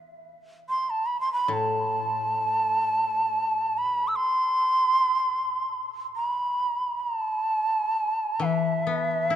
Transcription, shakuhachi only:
0, 0, Header, 1, 2, 480
1, 0, Start_track
1, 0, Tempo, 500000
1, 8983, End_track
2, 0, Start_track
2, 0, Title_t, "Shakuhachi"
2, 0, Program_c, 0, 77
2, 664, Note_on_c, 0, 84, 64
2, 865, Note_on_c, 0, 81, 56
2, 879, Note_off_c, 0, 84, 0
2, 1019, Note_on_c, 0, 83, 62
2, 1033, Note_off_c, 0, 81, 0
2, 1148, Note_off_c, 0, 83, 0
2, 1158, Note_on_c, 0, 84, 63
2, 1269, Note_off_c, 0, 84, 0
2, 1274, Note_on_c, 0, 83, 61
2, 1432, Note_off_c, 0, 83, 0
2, 1432, Note_on_c, 0, 83, 61
2, 1476, Note_on_c, 0, 81, 66
2, 1486, Note_off_c, 0, 83, 0
2, 3627, Note_on_c, 0, 83, 66
2, 3641, Note_off_c, 0, 81, 0
2, 3915, Note_on_c, 0, 88, 53
2, 3929, Note_off_c, 0, 83, 0
2, 3998, Note_on_c, 0, 84, 81
2, 4013, Note_off_c, 0, 88, 0
2, 5587, Note_off_c, 0, 84, 0
2, 5912, Note_on_c, 0, 83, 60
2, 6720, Note_on_c, 0, 82, 66
2, 6735, Note_off_c, 0, 83, 0
2, 6903, Note_off_c, 0, 82, 0
2, 6903, Note_on_c, 0, 81, 66
2, 8082, Note_on_c, 0, 77, 54
2, 8097, Note_off_c, 0, 81, 0
2, 8114, Note_on_c, 0, 76, 59
2, 8124, Note_off_c, 0, 77, 0
2, 8983, Note_off_c, 0, 76, 0
2, 8983, End_track
0, 0, End_of_file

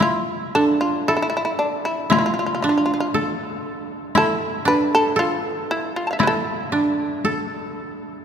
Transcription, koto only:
0, 0, Header, 1, 2, 480
1, 0, Start_track
1, 0, Key_signature, -1, "minor"
1, 0, Tempo, 1071429
1, 7, Time_signature, 2, 2, 24, 8
1, 487, Tempo, 1022147
1, 2887, Tempo, 1047120
1, 3827, End_track
2, 0, Start_track
2, 0, Title_t, "Koto"
2, 0, Program_c, 0, 107
2, 0, Note_on_c, 0, 64, 62
2, 247, Note_on_c, 0, 62, 57
2, 485, Note_on_c, 0, 69, 62
2, 960, Note_off_c, 0, 64, 0
2, 962, Note_on_c, 0, 64, 70
2, 1213, Note_off_c, 0, 62, 0
2, 1215, Note_on_c, 0, 62, 60
2, 1378, Note_off_c, 0, 69, 0
2, 1453, Note_on_c, 0, 69, 60
2, 1924, Note_off_c, 0, 64, 0
2, 1925, Note_on_c, 0, 64, 75
2, 2160, Note_off_c, 0, 62, 0
2, 2161, Note_on_c, 0, 62, 68
2, 2347, Note_off_c, 0, 69, 0
2, 2400, Note_on_c, 0, 69, 66
2, 2885, Note_off_c, 0, 64, 0
2, 2887, Note_on_c, 0, 64, 69
2, 3125, Note_off_c, 0, 62, 0
2, 3127, Note_on_c, 0, 62, 57
2, 3284, Note_off_c, 0, 69, 0
2, 3368, Note_on_c, 0, 69, 59
2, 3827, Note_off_c, 0, 62, 0
2, 3827, Note_off_c, 0, 64, 0
2, 3827, Note_off_c, 0, 69, 0
2, 3827, End_track
0, 0, End_of_file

